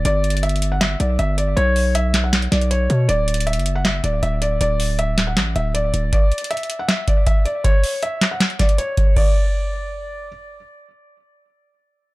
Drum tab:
CC |------------------------------------------------|------------------------------------------------|------------------------------------------------|------------------------------------------------|
HH |x-----x-x-x-x-x-x-x-----x-----x-----x-----x-----|x-----o-----x-----x-----x--x--x--x--x-----x-----|x-----x-x-x-x-x-x-x-----x-----x-----x-----x-----|x-----o-----x-----x-----x-----x-----x-----x-----|
CP |------------------------x-----------------------|------------------x-----x-----------------------|------------------------x-----------------------|------------------x-----x-----------------------|
SD |------------------------o-----------------------|------------------o-----o-----o-----------------|------------------------o-----------------------|------------------o-----o-----------------------|
BD |------------------------------------------------|------------------------------------------------|------------------------------------------------|------------------------------------------------|

CC |------------------------------------------------|------------------------------------------------|x-----------------------------------------------|------------------------------------------------|
HH |x-----x-x-x-x-x-x-x-----x-----x-----x-----x-----|x-----o-----x-----x-----x--x--x--x--x-----x-----|------------------------------------------------|------------------------------------------------|
CP |------------------------x-----------------------|------------------x-----x-----------------------|------------------------------------------------|------------------------------------------------|
SD |------------------------o-----------------------|------------------o-----o-----o-----------------|------------------------------------------------|------------------------------------------------|
BD |o-----------------------------o-----o-----------|o-----------------------------o-----------o-----|o-----------------------------------------------|------------------------------------------------|